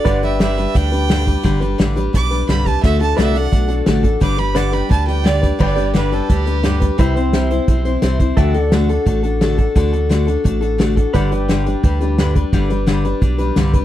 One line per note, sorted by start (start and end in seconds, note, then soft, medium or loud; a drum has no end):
0.00 0.22 D5 medium
0.05 0.67 G1 medium
0.05 0.23 G2 medium
0.05 0.23 D3 medium
0.05 0.23 G3 medium
0.05 0.23 D4 medium
0.05 0.22 G4 medium
0.05 2.80 B4 medium
0.05 0.21 B4 medium
0.05 2.80 D5 medium
0.05 0.27 F#5 medium
0.05 kick loud
0.05 closed hi-hat medium
0.23 0.39 G3 soft
0.23 0.39 D4 soft
0.23 0.40 G4 soft
0.23 0.40 B4 medium
0.23 0.40 E5 medium
0.23 closed hi-hat medium
0.27 2.81 G5 medium
0.40 0.58 G2 medium
0.40 0.58 D3 medium
0.40 0.58 G3 medium
0.40 0.58 D4 medium
0.40 0.57 G4 medium
0.40 0.56 B4 medium
0.40 0.78 E5 medium
0.40 snare loud
0.40 closed hi-hat medium
0.58 0.73 G3 soft
0.58 0.74 D4 soft
0.58 0.75 G4 soft
0.58 0.75 B4 medium
0.58 closed hi-hat medium
0.74 1.37 D2 medium
0.74 0.92 G3 medium
0.74 0.92 D4 medium
0.74 0.92 G4 medium
0.74 0.91 B4 medium
0.74 1.77 G5 loud
0.74 kick loud
0.74 closed hi-hat medium
0.92 1.08 G3 soft
0.92 1.09 D4 soft
0.92 1.09 G4 medium
0.92 1.09 B4 medium
0.92 closed hi-hat medium
1.09 1.27 G2 medium
1.09 1.27 D3 medium
1.09 1.27 G3 medium
1.09 1.27 D4 medium
1.09 1.26 G4 medium
1.09 1.25 B4 medium
1.09 snare loud
1.09 closed hi-hat medium
1.26 1.43 G3 soft
1.26 1.43 D4 soft
1.26 1.43 G4 medium
1.26 1.44 B4 medium
1.26 kick medium
1.26 closed hi-hat medium
1.43 1.75 G1 medium
1.43 1.61 G2 medium
1.43 1.61 D3 medium
1.43 1.61 G3 loud
1.43 1.61 D4 medium
1.43 1.60 G4 loud
1.43 1.59 B4 loud
1.43 kick loud
1.43 closed hi-hat medium
1.60 1.78 G3 soft
1.60 1.78 D4 medium
1.60 1.78 G4 medium
1.60 1.78 B4 medium
1.60 closed hi-hat medium
1.78 2.09 A1 medium
1.78 1.96 G2 medium
1.78 1.96 D3 medium
1.78 1.96 G3 medium
1.78 1.96 D4 medium
1.78 1.95 G4 medium
1.78 1.95 B4 loud
1.78 snare loud
1.78 closed hi-hat medium
1.96 2.12 G3 medium
1.96 2.12 D4 medium
1.96 2.13 G4 medium
1.96 2.13 B4 medium
1.96 closed hi-hat medium
2.13 2.44 B1 medium
2.13 2.31 G3 medium
2.13 2.31 D4 medium
2.13 2.30 G4 medium
2.13 2.29 B4 medium
2.13 2.48 D6 loud
2.13 kick loud
2.13 closed hi-hat medium
2.31 2.48 G3 soft
2.31 2.48 D4 soft
2.31 2.48 G4 soft
2.31 2.48 B4 medium
2.31 closed hi-hat medium
2.48 2.78 C2 medium
2.48 2.66 G2 medium
2.48 2.66 D3 medium
2.48 2.66 G3 medium
2.48 2.65 D4 medium
2.48 2.65 G4 medium
2.48 2.64 B4 medium
2.48 2.68 B5 medium
2.48 snare loud
2.48 closed hi-hat medium
2.65 2.83 G3 soft
2.65 2.83 D4 soft
2.65 2.83 G4 soft
2.65 2.83 B4 soft
2.65 2.82 A5 loud
2.65 kick medium
2.65 closed hi-hat medium
2.83 3.14 D2 medium
2.83 3.01 D3 medium
2.83 3.01 A3 medium
2.83 3.00 D4 medium
2.83 3.00 F#4 medium
2.83 2.99 A4 medium
2.83 3.00 E5 loud
2.83 kick loud
2.83 closed hi-hat medium
3.00 3.17 D4 soft
3.00 3.17 F#4 soft
3.00 3.17 A4 medium
3.00 3.18 A5 loud
3.00 closed hi-hat medium
3.17 3.48 C2 medium
3.17 3.35 D3 medium
3.17 3.35 A3 medium
3.17 3.34 D4 medium
3.17 3.34 F#4 medium
3.17 3.33 A4 medium
3.17 3.42 B4 medium
3.17 4.21 D5 medium
3.17 3.38 E5 loud
3.17 4.21 F#5 medium
3.17 snare loud
3.17 closed hi-hat medium
3.34 3.51 D4 soft
3.34 3.52 F#4 medium
3.34 3.52 A4 medium
3.34 3.70 F#5 loud
3.34 closed hi-hat medium
3.42 4.20 A4 medium
3.51 3.82 B1 medium
3.51 3.69 A3 medium
3.51 3.69 D4 medium
3.51 3.68 F#4 medium
3.51 3.67 A4 medium
3.51 kick loud
3.51 closed hi-hat medium
3.68 3.86 D4 soft
3.68 3.86 F#4 soft
3.68 3.86 A4 medium
3.68 closed hi-hat medium
3.86 4.17 A1 medium
3.86 4.04 D3 medium
3.86 4.04 A3 medium
3.86 4.04 D4 medium
3.86 4.03 F#4 medium
3.86 4.02 A4 loud
3.86 snare loud
3.86 closed hi-hat medium
4.03 4.20 D4 medium
4.03 4.21 F#4 medium
4.03 4.21 A4 medium
4.03 kick medium
4.03 closed hi-hat medium
4.20 4.83 G1 medium
4.20 4.38 G2 medium
4.20 4.39 D3 medium
4.20 4.39 G3 medium
4.20 4.38 D4 medium
4.20 4.37 G4 medium
4.20 4.36 B4 medium
4.20 4.40 D6 loud
4.20 kick loud
4.20 closed hi-hat medium
4.38 4.54 G3 soft
4.38 4.54 D4 medium
4.38 4.55 G4 medium
4.38 4.55 B4 medium
4.38 4.58 B5 medium
4.38 closed hi-hat medium
4.55 4.73 G2 medium
4.55 4.73 D3 medium
4.55 4.73 G3 medium
4.55 4.72 D4 medium
4.55 4.71 G4 medium
4.55 5.58 B4 medium
4.55 4.71 B4 medium
4.55 5.59 D5 medium
4.55 4.77 F#5 medium
4.55 4.75 D6 loud
4.55 snare loud
4.55 closed hi-hat medium
4.72 4.88 G3 soft
4.72 4.88 D4 soft
4.72 4.89 G4 medium
4.72 4.90 B4 medium
4.72 4.90 B5 loud
4.72 closed hi-hat medium
4.77 5.59 G5 medium
4.89 5.52 D2 medium
4.89 5.07 G3 medium
4.89 5.08 D4 medium
4.89 5.07 G4 medium
4.89 5.06 B4 medium
4.89 5.06 A5 medium
4.89 kick loud
4.89 closed hi-hat medium
5.07 5.23 G3 soft
5.07 5.23 D4 soft
5.07 5.24 G4 medium
5.07 5.24 B4 medium
5.07 5.27 G5 loud
5.07 closed hi-hat medium
5.24 5.42 G2 medium
5.24 5.42 D3 medium
5.24 5.42 G3 medium
5.24 5.41 D4 medium
5.24 5.41 G4 medium
5.24 5.40 B4 medium
5.24 5.59 D5 loud
5.24 snare loud
5.24 closed hi-hat medium
5.42 5.58 G3 soft
5.42 5.58 D4 soft
5.42 5.59 G4 medium
5.42 5.59 B4 medium
5.42 kick medium
5.42 closed hi-hat medium
5.59 6.21 G1 medium
5.59 5.77 G2 medium
5.59 5.77 D3 medium
5.59 5.76 G3 medium
5.59 5.76 D4 medium
5.59 5.75 G4 medium
5.59 5.74 B4 medium
5.59 6.97 B4 medium
5.59 5.94 D5 medium
5.59 6.98 D5 medium
5.59 kick loud
5.59 crash medium
5.63 6.99 G5 medium
5.75 5.93 G3 soft
5.75 5.93 D4 soft
5.75 5.94 G4 medium
5.75 5.94 B4 medium
5.75 closed hi-hat medium
5.93 6.11 G2 medium
5.93 6.12 D3 medium
5.93 6.12 G3 medium
5.93 6.12 D4 medium
5.93 6.11 G4 medium
5.93 6.11 B4 medium
5.93 6.14 B4 medium
5.93 snare loud
5.93 closed hi-hat medium
6.12 6.28 G3 medium
6.12 6.29 D4 medium
6.12 6.30 G4 medium
6.12 6.32 A4 medium
6.12 6.29 B4 medium
6.12 closed hi-hat medium
6.29 6.91 D2 medium
6.29 6.46 G3 medium
6.29 6.46 D4 medium
6.29 6.97 G4 loud
6.29 6.45 G4 medium
6.29 6.45 B4 medium
6.29 kick loud
6.29 closed hi-hat medium
6.46 6.62 G3 soft
6.46 6.62 D4 medium
6.46 6.63 G4 medium
6.46 6.63 B4 medium
6.46 closed hi-hat medium
6.63 6.81 G2 medium
6.63 6.81 D3 medium
6.63 6.81 G3 medium
6.63 6.80 D4 medium
6.63 6.79 G4 loud
6.63 6.79 B4 medium
6.63 snare loud
6.63 closed hi-hat medium
6.80 6.97 G3 soft
6.80 6.98 D4 medium
6.80 6.98 G4 medium
6.80 6.98 B4 medium
6.80 kick medium
6.80 closed hi-hat medium
6.98 7.60 C2 medium
6.98 7.16 C3 medium
6.98 7.16 G3 medium
6.98 7.16 C4 medium
6.98 7.16 E4 medium
6.98 7.20 B4 medium
6.98 7.15 C5 medium
6.98 8.37 E5 medium
6.98 kick loud
6.98 closed hi-hat medium
7.02 8.37 G5 medium
7.16 7.33 C4 medium
7.16 7.33 E4 medium
7.16 7.33 C5 medium
7.16 8.36 C5 medium
7.16 closed hi-hat medium
7.33 7.51 C3 medium
7.33 7.51 G3 medium
7.33 7.51 C4 medium
7.33 7.51 E4 medium
7.33 7.49 C5 medium
7.33 snare medium
7.33 closed hi-hat medium
7.51 7.68 C4 soft
7.51 7.68 E4 medium
7.51 7.68 C5 medium
7.51 closed hi-hat medium
7.68 7.97 B1 medium
7.68 7.85 G3 medium
7.68 7.86 C4 medium
7.68 7.85 E4 medium
7.68 7.84 C5 medium
7.68 kick loud
7.68 closed hi-hat medium
7.85 8.01 C4 soft
7.85 8.01 E4 medium
7.85 8.02 C5 medium
7.85 closed hi-hat medium
8.02 8.32 C2 medium
8.02 8.19 C3 medium
8.02 8.20 G3 medium
8.02 8.20 C4 medium
8.02 8.19 E4 medium
8.02 8.18 C5 medium
8.02 snare loud
8.02 closed hi-hat medium
8.19 8.38 C4 soft
8.19 8.37 E4 medium
8.19 8.37 C5 medium
8.19 kick medium
8.19 closed hi-hat medium
8.37 8.99 D2 medium
8.37 8.54 D3 medium
8.37 8.55 A3 medium
8.37 8.55 D4 medium
8.37 8.54 F#4 loud
8.37 11.11 A4 medium
8.37 8.53 A4 medium
8.37 8.62 E5 medium
8.37 8.59 G5 medium
8.37 kick loud
8.37 closed hi-hat medium
8.54 8.72 D4 soft
8.54 8.72 F#4 medium
8.54 8.72 A4 medium
8.54 closed hi-hat medium
8.59 11.11 D5 medium
8.59 11.12 F#5 medium
8.72 8.89 D3 medium
8.72 8.89 A3 medium
8.72 8.90 D4 medium
8.72 8.89 F#4 medium
8.72 8.88 A4 loud
8.72 snare loud
8.72 closed hi-hat medium
8.89 9.05 D4 soft
8.89 9.06 F#4 medium
8.89 9.06 A4 medium
8.89 closed hi-hat medium
9.06 9.68 A1 medium
9.06 9.23 A3 medium
9.06 9.24 D4 medium
9.06 9.23 F#4 medium
9.06 9.22 A4 medium
9.06 kick loud
9.06 closed hi-hat medium
9.23 9.41 D4 soft
9.23 9.41 F#4 medium
9.23 9.41 A4 medium
9.23 closed hi-hat medium
9.41 9.58 D3 medium
9.41 9.59 A3 medium
9.41 9.59 D4 medium
9.41 9.57 F#4 medium
9.41 9.56 A4 loud
9.41 snare loud
9.41 closed hi-hat medium
9.58 9.75 D4 soft
9.58 9.75 F#4 medium
9.58 9.75 A4 medium
9.58 kick medium
9.58 closed hi-hat medium
9.75 10.37 D2 medium
9.75 9.93 D3 medium
9.75 9.93 A3 medium
9.75 9.93 D4 medium
9.75 9.92 F#4 medium
9.75 9.91 A4 loud
9.75 kick loud
9.75 closed hi-hat medium
9.92 10.09 D4 soft
9.92 10.09 F#4 medium
9.92 10.10 A4 medium
9.92 closed hi-hat medium
10.09 10.27 D3 medium
10.09 10.27 A3 medium
10.09 10.27 D4 medium
10.09 10.27 F#4 medium
10.09 10.25 A4 medium
10.09 snare loud
10.09 closed hi-hat medium
10.27 10.43 D4 soft
10.27 10.44 F#4 medium
10.27 10.44 A4 medium
10.27 closed hi-hat medium
10.44 11.07 A1 medium
10.44 10.62 A3 medium
10.44 10.61 D4 medium
10.44 10.61 F#4 medium
10.44 10.60 A4 medium
10.44 kick loud
10.44 closed hi-hat medium
10.61 10.78 D4 medium
10.61 10.78 F#4 medium
10.61 10.78 A4 medium
10.61 closed hi-hat medium
10.78 10.96 D3 medium
10.78 10.96 A3 medium
10.78 10.97 D4 medium
10.78 10.96 F#4 medium
10.78 10.95 A4 medium
10.78 snare loud
10.78 closed hi-hat medium
10.96 11.13 D4 soft
10.96 11.14 F#4 medium
10.96 11.14 A4 medium
10.96 kick medium
10.96 closed hi-hat medium
11.13 11.76 G1 medium
11.13 11.31 G2 medium
11.13 11.31 D3 medium
11.13 11.31 G3 medium
11.13 11.31 D4 medium
11.13 11.31 G4 medium
11.13 13.85 B4 medium
11.13 11.30 B4 medium
11.13 13.85 D5 medium
11.13 11.36 F#5 medium
11.13 kick loud
11.13 closed hi-hat medium
11.31 11.48 G3 soft
11.31 11.48 D4 medium
11.31 11.48 G4 medium
11.31 11.48 B4 medium
11.31 closed hi-hat medium
11.36 13.85 G5 medium
11.48 11.66 G2 medium
11.48 11.66 D3 medium
11.48 11.66 G3 medium
11.48 11.66 D4 medium
11.48 11.66 G4 medium
11.48 11.65 B4 loud
11.48 snare loud
11.48 closed hi-hat medium
11.66 11.82 G3 soft
11.66 11.83 D4 medium
11.66 11.83 G4 medium
11.66 11.83 B4 medium
11.66 closed hi-hat medium
11.83 12.45 D2 medium
11.83 12.01 G3 medium
11.83 12.01 D4 medium
11.83 12.00 G4 medium
11.83 11.99 B4 medium
11.83 kick loud
11.83 closed hi-hat medium
12.00 12.18 G3 medium
12.00 12.18 D4 medium
12.00 12.18 G4 medium
12.00 12.18 B4 medium
12.00 closed hi-hat medium
12.18 12.35 G2 medium
12.18 12.35 D3 medium
12.18 12.36 G3 medium
12.18 12.35 D4 medium
12.18 12.35 G4 medium
12.18 12.34 B4 loud
12.18 snare loud
12.18 closed hi-hat medium
12.35 12.52 G3 medium
12.35 12.52 D4 soft
12.35 12.53 G4 medium
12.35 12.53 B4 medium
12.35 kick medium
12.35 closed hi-hat medium
12.53 13.14 G1 loud
12.53 12.70 G2 medium
12.53 12.70 D3 medium
12.53 12.70 G3 loud
12.53 12.70 D4 medium
12.53 12.69 G4 medium
12.53 12.68 B4 loud
12.53 kick loud
12.53 closed hi-hat medium
12.70 12.86 G3 medium
12.70 12.86 D4 medium
12.70 12.87 G4 medium
12.70 12.87 B4 medium
12.70 closed hi-hat medium
12.87 13.04 G2 medium
12.87 13.04 D3 medium
12.87 13.05 G3 medium
12.87 13.04 D4 medium
12.87 13.04 G4 medium
12.87 13.03 B4 loud
12.87 snare loud
12.87 closed hi-hat medium
13.04 13.20 G3 soft
13.04 13.21 D4 medium
13.04 13.22 G4 medium
13.04 13.22 B4 medium
13.04 closed hi-hat medium
13.21 13.51 B1 medium
13.21 13.39 G3 medium
13.21 13.38 D4 medium
13.21 13.38 G4 medium
13.21 13.37 B4 medium
13.21 kick loud
13.21 closed hi-hat medium
13.38 13.56 G3 soft
13.38 13.56 D4 medium
13.38 13.56 G4 medium
13.38 13.56 B4 medium
13.38 closed hi-hat medium
13.56 13.85 C2 medium
13.56 13.74 G2 medium
13.56 13.74 D3 medium
13.56 13.73 G3 medium
13.56 13.73 D4 medium
13.56 13.72 G4 medium
13.56 13.72 B4 medium
13.56 snare loud
13.56 closed hi-hat medium
13.73 13.85 G3 soft
13.73 13.85 D4 medium
13.73 13.85 G4 medium
13.73 13.85 B4 medium
13.73 kick medium
13.73 closed hi-hat medium